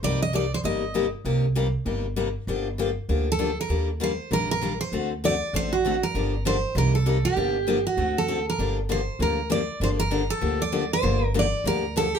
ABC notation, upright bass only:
X:1
M:4/4
L:1/8
Q:"Swing" 1/4=196
K:Gm
V:1 name="Upright bass" clef=bass
C,,4 G,,,4 | C,,4 G,,,4 | G,,,4 D,,4 | E,,4 B,,,4 |
D,,4 A,,,4 | G,,,4 C,,4 | G,,,4 D,,4 | G,,,4 D,,4 |
G,,,4 D,,4 | G,,,4 D,,4 |]